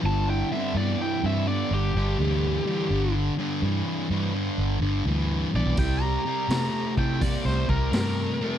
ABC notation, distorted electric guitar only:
X:1
M:4/4
L:1/8
Q:"Swing" 1/4=84
K:C
V:1 name="Distorted electric guitar" clef=bass
[G,,D,] [G,,D,] [G,,E,] [G,,E,] [G,,D,] [G,,D,] [G,,E,] [G,,E,] | [G,,D,] [G,,D,] [G,,E,] [G,,E,] [G,,D,] [G,,D,] [G,,E,] [G,,E,] | [C,G,] [C,G,] [C,A,] [C,A,] [C,G,] [C,G,] [C,A,] [C,A,] |]